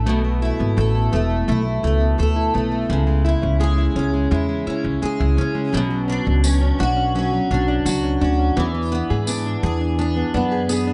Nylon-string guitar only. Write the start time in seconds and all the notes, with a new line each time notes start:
0.06 A3
0.25 A3
0.42 E4
0.59 B3
0.77 A3
0.95 E4
1.12 B3
1.30 A3
1.48 A3
1.65 A3
1.83 E4
2.01 B3
2.18 A3
2.36 E4
2.54 B3
2.72 A3
2.89 G#3
3.07 G#3
3.25 E4
3.42 C#4
3.60 G#3
3.78 E4
3.96 C#4
4.14 G#3
4.31 G#3
4.49 G#3
4.67 E4
4.84 C#4
5.02 G#3
5.20 E4
5.37 C#4
5.55 G#3
5.73 F#3
5.90 F#3
6.08 C#4
6.26 D4
6.44 F#3
6.61 C#4
6.79 D4
6.97 C#4
7.15 F#3
7.33 F#3
7.51 C#4
7.68 D4
7.86 F#3
8.03 C#4
8.21 D4
8.39 C#4
8.57 B3
8.75 B3
8.92 D4
9.10 G#4
9.28 B3
9.46 D4
9.63 G#4
9.81 D4
9.99 B3
10.17 B3
10.34 D4
10.52 G#4
10.69 B3
10.87 D4